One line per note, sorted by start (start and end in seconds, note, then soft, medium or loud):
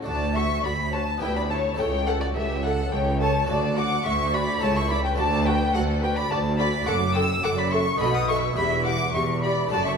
0.02 0.57 D2 medium
0.02 1.16 A3 medium
0.02 1.17 D4 medium
0.02 1.17 F#4 medium
0.02 0.33 D5 medium
0.02 0.37 A5 medium
0.07 0.57 D2 medium
0.07 0.55 D2 medium
0.07 0.15 F#4 medium
0.07 0.15 A5 medium
0.35 0.44 F#4 medium
0.35 0.63 E5 loud
0.35 0.63 C#6 medium
0.35 0.64 C#6 medium
0.63 1.12 D2 medium
0.63 1.15 D2 medium
0.63 0.73 F#4 medium
0.63 0.71 D5 medium
0.63 0.94 B5 medium
0.63 0.93 B5 medium
0.92 1.02 F#4 medium
0.92 1.00 C#5 medium
0.92 1.21 A5 medium
0.92 1.21 A5 loud
1.18 1.72 D2 medium
1.18 1.75 B3 medium
1.18 1.75 E4 medium
1.18 1.76 G4 medium
1.18 1.35 B4 medium
1.18 1.35 G5 medium
1.22 1.69 D2 medium
1.22 1.30 E4 medium
1.22 1.36 G5 loud
1.36 1.50 D5 medium
1.36 1.42 B5 medium
1.36 1.51 B5 loud
1.50 1.58 E4 medium
1.50 1.78 C#5 loud
1.50 1.58 A5 medium
1.50 1.79 A5 loud
1.74 3.43 A3 medium
1.74 3.43 E4 medium
1.74 3.44 A4 medium
1.78 2.29 C#2 medium
1.78 2.26 C#2 medium
1.78 1.87 A4 medium
1.78 2.07 C#5 medium
1.78 1.86 G5 medium
1.78 2.07 G5 loud
2.07 2.21 A4 medium
2.07 2.16 A4 medium
2.07 2.12 F#5 medium
2.07 2.22 F#5 loud
2.21 2.35 F#4 medium
2.21 2.26 D5 medium
2.21 2.36 D5 medium
2.35 2.85 C#2 medium
2.35 2.86 C#2 medium
2.35 2.83 C#2 medium
2.35 2.64 G4 medium
2.35 2.44 A4 medium
2.35 2.64 E5 medium
2.63 2.92 A4 medium
2.63 2.72 A4 medium
2.63 2.93 F#5 medium
2.63 2.73 F#5 medium
2.92 3.39 C#2 medium
2.92 3.42 C#2 medium
2.92 3.00 A4 medium
2.92 3.19 C#5 medium
2.92 3.19 G5 medium
2.92 3.01 G5 loud
3.20 3.29 A4 medium
3.20 3.48 C#5 loud
3.20 3.47 A5 medium
3.20 3.48 A5 loud
3.45 4.56 A3 medium
3.45 4.57 F#4 medium
3.45 4.58 A4 medium
3.45 3.78 A5 medium
3.49 3.96 D2 medium
3.49 3.99 D2 medium
3.49 3.57 F#4 medium
3.49 3.76 D5 loud
3.49 3.57 A5 loud
3.77 3.85 F#4 medium
3.77 4.05 F#5 loud
3.77 4.06 D6 medium
3.77 4.05 D6 loud
4.05 4.55 D2 medium
4.05 4.52 D2 medium
4.05 4.13 F#4 medium
4.05 4.33 E5 medium
4.05 4.35 C#6 loud
4.05 4.33 C#6 loud
4.33 4.41 F#4 medium
4.33 4.61 D5 loud
4.33 4.62 B5 loud
4.33 4.64 B5 medium
4.58 5.12 C#2 medium
4.58 5.13 A3 medium
4.58 5.15 E4 medium
4.58 4.70 E4 medium
4.58 5.16 A4 medium
4.58 4.75 C#5 loud
4.58 4.76 A5 loud
4.62 5.12 C#2 medium
4.62 5.09 C#2 medium
4.62 4.78 A5 loud
4.75 4.89 E5 medium
4.75 4.92 C#6 medium
4.75 4.90 C#6 loud
4.90 4.98 E4 medium
4.90 5.04 D5 loud
4.90 5.04 B5 loud
5.04 5.18 B4 medium
5.04 5.18 G5 medium
5.04 5.10 G5 loud
5.14 5.67 D2 medium
5.14 5.68 D2 loud
5.14 6.81 A3 medium
5.14 6.82 F#4 medium
5.14 5.26 F#4 medium
5.14 6.83 A4 medium
5.14 5.46 D5 loud
5.19 5.65 D2 medium
5.19 5.48 A5 loud
5.19 5.46 A5 loud
5.45 5.54 F#4 medium
5.45 5.74 B4 medium
5.45 5.74 G5 loud
5.73 6.24 D2 medium
5.73 6.21 D2 medium
5.73 5.82 F#4 medium
5.73 6.02 A4 loud
5.73 5.82 F#5 medium
5.73 6.03 F#5 loud
6.02 6.10 F#4 medium
6.02 6.16 B4 loud
6.02 6.08 G5 loud
6.02 6.18 G5 loud
6.16 6.29 D5 medium
6.16 6.32 B5 medium
6.16 6.31 B5 loud
6.30 6.80 D2 loud
6.30 6.78 D2 medium
6.30 6.81 D2 medium
6.30 6.39 F#4 medium
6.30 6.38 D5 loud
6.30 6.58 A5 medium
6.30 6.40 A5 loud
6.59 6.67 F#4 medium
6.59 6.87 D5 loud
6.59 6.88 B5 loud
6.59 6.67 B5 loud
6.83 7.37 F#1 medium
6.83 7.95 A3 medium
6.83 7.96 F#4 medium
6.83 7.97 A4 medium
6.83 6.95 F#5 loud
6.83 7.16 D6 medium
6.87 7.37 F#2 loud
6.87 7.34 F#2 medium
6.87 6.95 A4 medium
6.87 7.15 D6 loud
7.15 7.24 A4 medium
7.15 7.23 G5 loud
7.15 7.45 E6 loud
7.15 7.44 E6 loud
7.43 7.93 F#1 medium
7.43 7.91 F#2 medium
7.43 7.94 F#2 loud
7.43 7.52 A4 medium
7.43 7.49 F#5 loud
7.43 7.59 D6 loud
7.43 7.49 D6 loud
7.57 7.72 D5 loud
7.57 7.73 B5 medium
7.57 7.72 B5 loud
7.72 7.80 A4 medium
7.72 7.80 E5 loud
7.72 7.99 C#6 loud
7.72 8.01 C#6 loud
7.96 8.50 B1 loud
7.96 8.50 B2 medium
7.96 8.52 B3 medium
7.96 8.54 D#4 medium
7.96 8.55 A4 medium
7.96 8.14 D#5 loud
7.96 8.16 B5 medium
8.01 8.48 B2 medium
8.01 8.09 A4 medium
8.01 8.15 B5 loud
8.13 8.28 F#5 medium
8.13 8.28 D#6 medium
8.13 8.29 D#6 loud
8.27 8.37 A4 medium
8.27 8.55 E5 loud
8.27 8.36 C#6 loud
8.27 8.57 C#6 loud
8.53 9.07 E1 medium
8.53 9.66 B3 medium
8.53 9.67 E4 medium
8.53 9.68 G4 medium
8.53 8.85 E5 loud
8.53 8.65 B5 loud
8.53 8.85 B5 medium
8.57 9.08 E2 loud
8.57 9.05 E2 medium
8.57 8.65 G4 medium
8.85 8.94 G4 medium
8.85 9.14 F#5 medium
8.85 9.14 D6 loud
8.85 9.13 D6 loud
9.14 9.65 E1 medium
9.14 9.65 E2 medium
9.14 9.62 E2 medium
9.14 9.22 G4 medium
9.14 9.22 E5 medium
9.14 9.42 C#6 medium
9.42 9.51 G4 medium
9.42 9.71 D5 loud
9.42 9.71 B5 loud
9.42 9.51 B5 medium
9.67 9.97 F#1 medium
9.67 9.97 F#2 medium
9.67 9.97 A3 medium
9.67 9.97 D4 medium
9.67 9.97 A4 medium
9.67 9.85 A5 loud
9.71 9.97 F#2 medium
9.71 9.80 F#4 medium
9.71 9.86 D5 loud
9.71 9.85 A5 medium
9.86 9.97 E5 medium
9.86 9.97 C#6 loud
9.86 9.92 C#6 medium